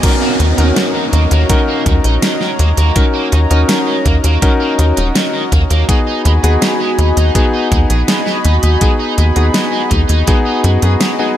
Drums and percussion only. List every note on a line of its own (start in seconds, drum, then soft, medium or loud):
0.03 kick loud
0.03 closed hi-hat loud
0.03 crash loud
0.40 closed hi-hat medium
0.58 closed hi-hat medium
0.76 snare loud
0.76 closed hi-hat loud
1.13 closed hi-hat medium
1.31 closed hi-hat medium
1.49 kick loud
1.49 closed hi-hat loud
1.86 kick loud
1.86 closed hi-hat medium
2.04 closed hi-hat medium
2.22 snare loud
2.22 closed hi-hat medium
2.41 snare soft
2.59 closed hi-hat medium
2.77 closed hi-hat medium
2.96 kick loud
2.96 closed hi-hat loud
3.32 closed hi-hat medium
3.51 closed hi-hat medium
3.69 snare loud
3.69 closed hi-hat loud
4.06 kick medium
4.06 closed hi-hat medium
4.24 closed hi-hat medium
4.42 kick loud
4.42 closed hi-hat loud
4.79 closed hi-hat medium
4.97 closed hi-hat medium
5.15 snare loud
5.15 closed hi-hat loud
5.52 kick medium
5.52 closed hi-hat medium
5.70 closed hi-hat medium
5.89 kick loud
5.89 closed hi-hat loud
6.25 closed hi-hat medium
6.44 closed hi-hat medium
6.62 snare loud
6.62 closed hi-hat loud
6.99 closed hi-hat medium
7.17 closed hi-hat medium
7.35 kick loud
7.35 closed hi-hat loud
7.72 kick loud
7.72 closed hi-hat medium
7.90 closed hi-hat medium
8.08 snare loud
8.08 closed hi-hat loud
8.26 snare soft
8.45 closed hi-hat medium
8.63 closed hi-hat medium
8.81 kick loud
8.81 closed hi-hat medium
9.18 closed hi-hat medium
9.36 closed hi-hat medium
9.54 snare loud
9.54 closed hi-hat loud
9.91 kick medium
9.91 closed hi-hat medium
10.09 closed hi-hat medium
10.27 kick loud
10.27 closed hi-hat loud
10.64 closed hi-hat medium
10.82 closed hi-hat medium
11.01 snare loud
11.01 closed hi-hat medium